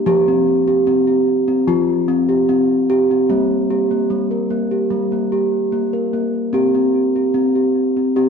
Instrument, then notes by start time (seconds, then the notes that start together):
steel tongue drum
0.06 F3 G4
0.28 C4
0.68 G4
0.87 C4
1.07 G4
1.48 C4
1.68 F3 F4
2.08 C4
2.29 G4
2.49 C4
2.90 G4
3.11 C4
3.29 G3 A#3
3.70 G4
3.91 A#3
4.10 G3
4.31 A#4
4.50 A#3
4.71 G4
4.90 G3
5.12 A#3
5.32 G4
5.72 A#3
5.93 A#4
6.13 A#3
6.53 C4 G4
6.75 C4
7.16 G4
7.34 C4
7.55 G4
7.97 C4
8.16 C4 G4